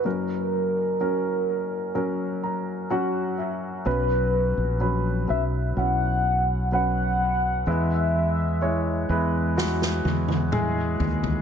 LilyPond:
<<
  \new Staff \with { instrumentName = "Soft synth lead" } { \time 4/4 \key fis \mixolydian \tempo 4 = 63 ais'2. r4 | b'4 r8 e''8 fis''4 fis''4 | e''2 r2 | }
  \new Staff \with { instrumentName = "Grand piano" } { \time 4/4 \key fis \mixolydian << { r2 r8 ais''8 fis''8 e''8 | r1 | r1 | } \\ { <fis cis' ais'>4 <fis cis' ais'>4 <fis cis' ais'>4 <fis cis' fis'>4 | <fis cis' b'>4 <fis cis' b'>8 <fis cis' b'>8 <fis cis' e'>4 <fis cis' b'>4 | <gis e' b'>4 <gis e' cis''>8 <gis e' b'>8 <gis e' fis'>4 <gis e' gis'>4 | } >> }
  \new Staff \with { instrumentName = "Grand piano" } { \clef bass \time 4/4 \key fis \mixolydian <fis,, fis,>1 | b4. r2 r8 | e4. r2 r8 | }
  \new Staff \with { instrumentName = "Fretless electric bass" } { \clef bass \time 4/4 \key fis \mixolydian r1 | b,,8. ais,,8. b,,8 b,,2 | e,4. e,4 e,4 dis,8 | }
  \new DrumStaff \with { instrumentName = "Drums" } \drummode { \time 4/4 r4 r4 r4 r4 | r4 r4 r4 r4 | r4 r4 sn16 sn16 tommh16 tommh16 toml8 tomfh16 tomfh16 | }
>>